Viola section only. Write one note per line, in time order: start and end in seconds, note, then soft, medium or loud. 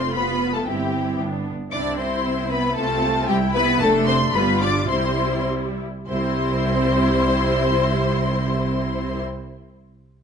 0.00 0.12 A3 medium
0.00 0.63 F4 medium
0.15 0.67 B3 medium
0.67 1.20 C4 medium
0.67 1.20 E4 medium
1.20 1.53 B3 medium
1.20 1.52 D4 soft
1.73 2.74 C4 medium
1.73 2.74 E4 medium
2.78 3.28 C4 medium
2.78 3.30 F4 medium
3.29 3.37 C4 medium
3.29 3.81 E4 medium
3.55 3.63 B3 medium
3.82 4.33 A3 medium
3.82 4.33 D4 medium
4.34 4.88 G3 medium
4.34 4.89 F4 medium
4.89 5.83 G3 medium
4.89 5.85 E4 medium
6.09 9.21 G3 medium
6.09 9.21 E4 medium